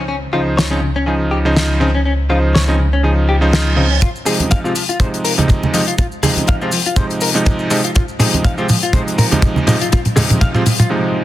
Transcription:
Already playing: C#2
0.08 C#4
0.33 C#3 F3 D#4 F4 C5
0.57 C#5, snare
0.70 C#3 F3 C4 C#4 D#4
0.82 C#3
0.96 C#4
1.06 C#3 F3 D#4 G#4
1.31 G4
1.45 C#3 F3 D#4 C5
1.56 snare
1.80 C#3 F3 C4 D#4
1.95 C#4
2.06 C#4
2.29 C#3 F3 D#4 F4 C5
2.55 C#5, snare
2.68 C#3 F3 C4 C#4 D#4
2.79 C#3
2.93 C#4
3.03 C#3 F3 D#4 G#4, reverse cymbal
3.29 G4
3.41 C#3 F3 D#4 C5
3.53 snare
3.76 C#3 F3 C4 D#4
3.91 C#4
4.02 F4, kick, closed hi-hat, mid tom, maracas
4.16 maracas
4.25 C3 F3 G#3 D#4 G#4, open hi-hat, maracas
4.40 closed hi-hat, high conga, maracas
4.51 F5, kick, closed hi-hat, mid tom, maracas
4.64 C3 F3 G#3 C4 F4, maracas
4.75 F3, open hi-hat, maracas
4.89 F4, closed hi-hat, maracas
4.99 C3 F3 G#3 D#4 C5, kick, closed hi-hat, mid tom, maracas
5.14 closed hi-hat, maracas
5.24 A#4, open hi-hat, maracas
5.38 C3 F3 G#3 D#4, closed hi-hat, low conga, maracas
5.48 kick, closed hi-hat, mid tom, maracas
5.63 low conga, maracas
5.73 C3 F3 G#3 D#4, open hi-hat, maracas
5.87 F4, closed hi-hat, maracas
5.98 F4, kick, closed hi-hat, mid tom, maracas
6.12 maracas
6.23 C3 F3 G#3 D#4 G#4, open hi-hat, low conga, maracas
6.36 closed hi-hat, high conga, maracas
6.47 F5, kick, closed hi-hat, mid tom, maracas
6.61 C3 F3 G#3 C4 F4, maracas
6.72 F3, open hi-hat, maracas
6.85 F4, closed hi-hat, maracas
6.96 C3 F3 G#3 D#4 C5, kick, closed hi-hat, mid tom, maracas
7.10 closed hi-hat, maracas
7.21 A#4, open hi-hat, maracas
7.34 C3 F3 G#3 D#4, closed hi-hat, maracas
7.45 kick, closed hi-hat, mid tom, maracas
7.59 maracas
7.70 C3 F3 G#3 D#4, open hi-hat, maracas
7.84 F4, closed hi-hat, maracas
7.95 F4, kick, closed hi-hat, mid tom, maracas
8.08 maracas
8.19 C3 F3 G#3 D#4 G#4, open hi-hat, mid tom, maracas
8.34 closed hi-hat, high conga, maracas
8.44 F5, kick, closed hi-hat, mid tom, maracas
8.58 C3 F3 G#3 C4 F4, maracas
8.69 F3, open hi-hat, mid tom, maracas
8.83 F4, closed hi-hat, maracas
8.93 C3 F3 G#3 D#4 C5, kick, closed hi-hat, mid tom, maracas
9.08 closed hi-hat, maracas
9.18 A#4, open hi-hat, mid tom, maracas
9.31 C3 F3 G#3 D#4, closed hi-hat, low conga, maracas
9.42 kick, closed hi-hat, mid tom, maracas
9.56 low conga, maracas
9.66 C3 F3 G#3 D#4, open hi-hat, mid tom, maracas
9.80 F4, closed hi-hat, maracas
9.92 F4, kick, closed hi-hat, mid tom, maracas
10.05 closed hi-hat, mid tom, maracas
10.15 C3 F3 G#3 D#4 G#4, open hi-hat, mid tom, low conga, maracas
10.30 closed hi-hat, mid tom, high conga, maracas
10.41 F5, kick, closed hi-hat, mid tom, maracas
10.55 C3 F3 G#3 C4 F4, mid tom, maracas
10.66 F3, open hi-hat, mid tom, maracas
10.79 F4, closed hi-hat, mid tom, maracas
10.90 C3 F3 G#3 D#4, swell

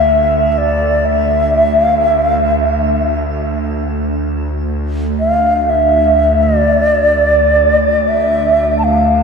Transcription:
Already playing: D2 E5
0.52 E5
0.58 D5
1.06 E5
1.84 F5
2.00 E5
2.27 F5
2.43 E5
5.20 F5
5.69 E5
6.43 D5
6.67 D2
8.08 E5
8.79 A5
8.84 F5

